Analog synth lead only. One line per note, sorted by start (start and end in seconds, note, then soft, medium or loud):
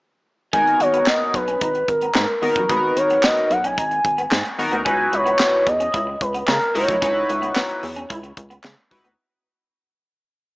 0.53 0.82 G#5 loud
0.81 1.09 C#5 loud
1.07 1.36 D#5 loud
1.34 1.90 B4 loud
1.89 2.42 A#4 loud
2.43 2.71 A#4 medium
2.70 2.99 B4 medium
2.97 3.26 C#5 medium
3.24 3.53 D#5 medium
3.51 3.67 F#5 medium
3.65 4.46 G#5 loud
4.87 5.12 G#5 loud
5.14 5.69 C#5 loud
5.68 6.23 D#5 loud
6.21 6.48 B4 medium
6.49 6.73 A#4 medium
6.75 8.60 C#5 loud